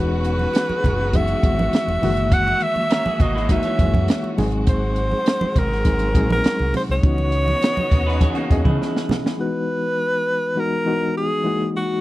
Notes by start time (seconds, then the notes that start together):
Already playing: E1 E3 F#3 G#3 B3 C#4 D#4 F#4 G#4
0.00 B4
0.24 closed hi-hat
0.39 high conga
0.54 snare, closed hi-hat, muted conga
0.69 muted fingered electric bass stroke, high conga
0.84 F#1, kick, closed hi-hat, low conga
1.13 E3 G#3 B3 D#4 F#4 E5, kick, closed hi-hat, muted conga, high conga
1.28 closed hi-hat, muted conga
1.42 G#1 D#3 E3 G#3 B3 F#4, kick, closed hi-hat, high conga
1.59 high conga
1.73 muted fingered electric bass stroke, snare, closed hi-hat, muted conga
1.87 E1, muted conga
2.02 F#1 D#3 E3 G#3 A#3 F#4 E5, snare, open hi-hat, high conga, low conga
2.17 closed hi-hat
2.32 F#5, kick, closed hi-hat, muted conga
2.47 muted conga
2.61 E5, closed hi-hat
2.76 high conga
2.90 C#4 A#4, snare, closed hi-hat, muted conga
3.05 G#4, muted fingered electric bass stroke, muted conga, high conga
3.20 G#1 A#3 F#4 D#5, kick, closed hi-hat, low conga
3.35 G#3 E4, snare
3.49 E3 F#3 G#3 A#3 D#4 F#4 E5, kick, closed hi-hat, muted conga, high conga
3.63 E3 C#4, closed hi-hat, muted conga
3.78 F#1 E3 G#3 A#3 E4 G#4, kick, closed hi-hat, high conga
3.94 F#2, kick, high conga
4.08 snare, closed hi-hat, muted conga
4.24 muted conga
4.37 G#1 F#3 G#3 C4 D#4 G#4, snare, open hi-hat, high conga, low conga
4.52 closed hi-hat
4.67 C5, kick, closed hi-hat, muted conga
4.96 closed hi-hat
5.12 high conga
5.26 snare, closed hi-hat
5.41 muted fingered electric bass stroke, muted conga, high conga
5.56 G#1 A#4, kick, closed hi-hat, low conga
5.72 snare
5.84 F#3 G#3 C4 D#4 G#4, kick, closed hi-hat, high conga
5.99 closed hi-hat, muted conga
6.14 A#1 F#3 G#3 C4 D#4 G#4, kick, closed hi-hat, high conga
6.30 A#4, high conga
6.44 muted fingered electric bass stroke, snare, closed hi-hat
6.59 C2, muted conga
6.74 C5, snare, open hi-hat, high conga, low conga
6.89 C2 C#5
7.02 C#2 C#3 E3 B3 C#4 D#4 F#4 D#5, kick, closed hi-hat
7.18 muted conga
7.32 closed hi-hat
7.48 high conga
7.61 snare, closed hi-hat, muted conga
7.77 muted fingered electric bass stroke, muted conga, high conga
7.91 D#2, kick, closed hi-hat, low conga
8.07 D#4 B4, snare
8.20 E3 B3 C#4 D#4 G#4, kick, closed hi-hat, muted conga, high conga
8.35 A#3 F#4, closed hi-hat
8.50 E2 E3 B3 C#4 G#4 D#5, kick, closed hi-hat, high conga
8.64 C#3 G#3 E4, kick, high conga
8.82 snare
8.96 snare
9.09 snare, high conga, low conga
9.26 snare
9.37 E3 G#3 B3 D#4 F#4 B4
10.55 E3 G#3 B3 D#4 F#4
10.59 A#4
10.85 E3 G#3 B3 D#4 F#4
11.17 G#4
11.44 E3 G#3 A#3 D#4 F#4
11.77 F#4